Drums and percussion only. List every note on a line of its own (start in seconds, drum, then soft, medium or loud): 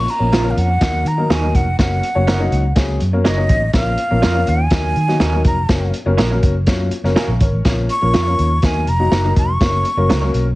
0.08 closed hi-hat medium
0.32 snare loud
0.32 closed hi-hat medium
0.57 closed hi-hat medium
0.81 kick medium
0.81 snare loud
0.81 closed hi-hat medium
1.06 closed hi-hat medium
1.30 snare loud
1.30 closed hi-hat medium
1.55 kick medium
1.55 closed hi-hat medium
1.79 kick loud
1.79 snare medium
1.79 closed hi-hat medium
2.03 closed hi-hat medium
2.27 snare loud
2.27 closed hi-hat medium
2.52 closed hi-hat medium
2.76 kick medium
2.76 snare loud
2.76 closed hi-hat medium
3.00 closed hi-hat medium
3.25 snare medium
3.25 closed hi-hat medium
3.49 kick medium
3.49 closed hi-hat medium
3.73 kick loud
3.73 snare medium
3.73 closed hi-hat medium
3.98 closed hi-hat medium
4.23 snare loud
4.23 closed hi-hat medium
4.47 closed hi-hat medium
4.70 kick medium
4.70 snare loud
4.70 closed hi-hat medium
4.96 closed hi-hat medium
5.09 snare soft
5.20 snare loud
5.20 closed hi-hat medium
5.45 kick medium
5.45 closed hi-hat medium
5.69 kick medium
5.69 snare loud
5.69 closed hi-hat medium
5.94 closed hi-hat medium
6.18 snare loud
6.18 closed hi-hat medium
6.43 kick medium
6.43 closed hi-hat medium
6.67 kick medium
6.67 snare medium
6.67 closed hi-hat medium
6.91 closed hi-hat medium
7.05 snare soft
7.16 snare medium
7.16 closed hi-hat medium
7.41 kick medium
7.41 closed hi-hat medium
7.65 kick loud
7.65 snare medium
7.65 closed hi-hat medium
7.89 closed hi-hat medium
8.14 snare loud
8.14 closed hi-hat medium
8.39 closed hi-hat medium
8.62 kick medium
8.62 snare loud
8.62 closed hi-hat medium
8.87 closed hi-hat medium
9.12 snare medium
9.12 closed hi-hat medium
9.36 kick medium
9.36 closed hi-hat medium
9.61 kick medium
9.61 snare loud
9.61 closed hi-hat medium
9.85 closed hi-hat medium
10.10 snare loud
10.10 closed hi-hat medium
10.34 closed hi-hat medium